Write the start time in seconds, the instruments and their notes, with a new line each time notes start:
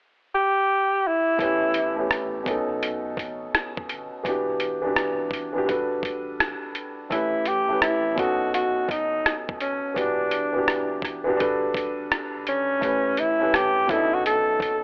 0.35 tenor saxophone G4
1.07 tenor saxophone E4
1.38 sub bass A1, upright piano A2 A3 B3 C#4, kick, closed hi-hat
1.43 upright piano G4
1.74 closed hi-hat
1.95 upright piano A2 A3 B3 C#4
2.00 upright piano G4
2.11 cross-stick, closed hi-hat
2.44 sub bass B1, upright piano B2 B3 C#4, kick, closed hi-hat
2.48 upright piano D#4 A4
2.83 closed hi-hat
3.17 sub bass A1, kick, closed hi-hat
3.55 cross-stick, closed hi-hat
3.77 kick
3.89 sub bass G1, closed hi-hat
4.23 sub bass E1, upright piano E3 B3 D4 F#4, kick, closed hi-hat
4.29 upright piano G4
4.60 closed hi-hat
4.82 upright piano E3 B3 D4
4.86 upright piano F#4 G4
4.96 cross-stick, closed hi-hat
5.31 kick, closed hi-hat
5.53 upright piano E3 B3 D4
5.57 upright piano F#4 G4
5.65 upright piano G3 D4 F#4 A4, kick, closed hi-hat
5.70 sub bass G1, upright piano B4
6.03 sub bass A1, kick, closed hi-hat
6.40 cross-stick, closed hi-hat
6.75 closed hi-hat
7.09 sub bass A1, upright piano A2 A3 C#4 G4, tenor saxophone E4, kick, closed hi-hat
7.14 upright piano B4
7.46 tenor saxophone G4, closed hi-hat
7.67 upright piano A2 A3 C#4
7.72 upright piano G4 B4
7.82 tenor saxophone E4, cross-stick, closed hi-hat
8.15 sub bass B1, upright piano B2 B3 C#4 D#4, tenor saxophone F#4, kick, closed hi-hat
8.20 upright piano A4
8.54 tenor saxophone F#4, closed hi-hat
8.89 sub bass A1, tenor saxophone D#4, kick, closed hi-hat
9.26 cross-stick, closed hi-hat
9.49 kick
9.60 sub bass F#1, tenor saxophone C#4, closed hi-hat
9.94 sub bass E1, upright piano E3 B3 D4 F#4, kick, closed hi-hat
9.99 tenor saxophone D4, upright piano G4
10.31 closed hi-hat
10.53 upright piano E3 B3 D4 F#4
10.58 upright piano G4
10.68 cross-stick, closed hi-hat
11.02 kick, cross-stick, closed hi-hat
11.24 upright piano E3 B3 D4 F#4
11.29 upright piano G4
11.36 upright piano G3 D4 F#4 A4
11.40 sub bass G1, upright piano B4, kick, closed hi-hat
11.74 sub bass A1, kick, closed hi-hat
11.99 sub bass G1
12.12 cross-stick, closed hi-hat
12.35 sub bass F#1
12.47 sub bass G#1, tenor saxophone C#4, closed hi-hat
12.79 sub bass A1, upright piano A2 A3 C#4 G4, kick, closed hi-hat
12.84 upright piano B4
13.17 tenor saxophone E4, closed hi-hat
13.38 upright piano A2 A3 C#4 G4
13.43 upright piano B4
13.54 tenor saxophone G4, cross-stick, closed hi-hat
13.86 sub bass B1, upright piano B2 B3 C#4, tenor saxophone E4, kick
13.90 upright piano D4 A4, closed hi-hat
13.97 upright piano D#4
14.14 tenor saxophone F#4
14.26 tenor saxophone A4, closed hi-hat
14.60 sub bass A1, kick, closed hi-hat